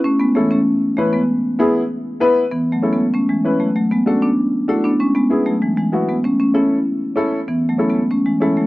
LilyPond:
<<
  \new Staff \with { instrumentName = "Upright piano" } { \time 4/4 \key a \major \tempo 4 = 194 r4 <cis' e' a'>8 r4. <cis' e' b'>8 r8 | r4 <b e' gis'>8 r4. <b e' b'>8 r8 | r4 <cis' e' a'>8 r4. <cis' e' b'>8 r8 | r4 <d' fis' a'>8 r4. <d' fis' a'>8 r8 |
r4 <b e' gis'>8 r4. <b e' fis'>8 r8 | r4 <cis' e' a'>8 r4. <cis' e' a'>8 r8 | r4 <cis' e' a'>8 r4. <cis' e' a'>8 r8 | }
  \new Staff \with { instrumentName = "Marimba" } { \time 4/4 \key a \major <a cis'>8 <gis b>8 <e a>8 <a cis'>4. <e a>8 <gis b>8~ | <gis b>2.~ <gis b>8 r8 | \tuplet 3/2 { <e b>4 <fis a>8~ <fis a>8 <gis b>4 } <a cis'>8 <e gis>4 <fis a>8 | <fis a>8 <gis b>8 <a cis'>8 <b d'>4. <a e'>8 <b d'>8 |
<gis cis'>8 <gis b>4 <fis a>8 <e gis>8 <e gis>4 <gis b>8 | <a cis'>8 <a cis'>8 <cis' e'>2~ <cis' e'>8 r8 | \tuplet 3/2 { <e b>4 <fis a>8~ <fis a>8 <gis b>4 } <a cis'>8 <e gis>8 <e gis>8 <fis a>8 | }
>>